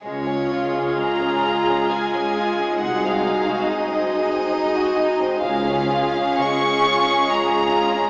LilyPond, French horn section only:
\new Staff \with { instrumentName = "French horn section" } { \time 3/4 \key des \major \tempo 4 = 68 <aes f'>2 <aes f'>4 | <aes ges'>4 <aes ges'>2 | <aes f'>4 <aes f'>2 | }